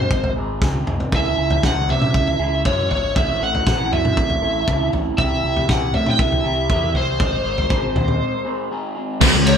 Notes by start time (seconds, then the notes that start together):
Already playing: F#2 G#3 C4 D#4 G#4 C5
0.11 G#1, kick
0.24 floor tom
0.36 G#1 G#3 C4 D#4 G#4
0.61 C#2 G#2 D#3 G#3 C4 D#4 G#4, kick, snare
0.87 C2 G#3 C4 D#4 G#4, mid tom
1.00 floor tom
1.12 C#2 C#3 G#3 C#4 E4 G#4 E5, kick, floor tom
1.37 C#2 C#4 E4 G#4
1.50 floor tom
1.63 C#2 G#3 C#4 E4 G#4 F#5, kick, snare, mid tom
1.88 C3 E5, floor tom
2.02 mid tom
2.14 C#2, kick
2.27 floor tom
2.39 C#2 C#4 E4 G#4
2.64 F#2 C#3 G#3 C#4 E4 G#4 C#5, kick
2.90 G#1 C#4 E4 G#4 C#5, floor tom
3.15 A1 A2 E3 C4 E4 A4 E5, kick, floor tom
3.41 A1 C4 E4 A4 F#5
3.55 floor tom
3.66 A1 E3 C4 E4 A4, kick, snare, mid tom
3.92 F#2 E5, floor tom
4.05 mid tom
4.17 A1, kick
4.30 floor tom
4.42 A1 C4 E4 A4
4.67 C#2 A2 E3 C4 E4 A4, kick
4.93 A1 C4 E4 A4, floor tom
5.18 C2 C3 G3 C4 E4 G4 E5, kick, floor tom
5.44 C2 C4 E4 G4
5.56 floor tom
5.69 C2 G3 C4 E4 G4 F#5, kick, snare, mid tom
5.94 A2 E5, floor tom
6.06 G5, mid tom
6.19 C2 E5, kick
6.32 floor tom
6.44 C2 C4 E4 G4
6.69 E2 C3 G3 C4 E4 G4, kick
6.94 C2 C4 E4 G4 C5, floor tom
7.19 G#1 G#2 D#3 G#3 C4 D#4 G#4, kick, floor tom
7.44 G#1 G#3 C4 D#4 G#4
7.58 floor tom
7.69 G#1 G#3 C4 D#4 G#4, kick
7.96 D#2, floor tom, mid tom
8.08 mid tom
8.45 G#3 C4 D#4 G#4
8.70 G#2 D#3 G#3 C4 D#4 G#4
8.95 G#3 C4 D#4 G#4
9.21 C#2 C#3 G#3, kick, crash
9.34 C#2 C#3 G#3
9.47 C#5, ride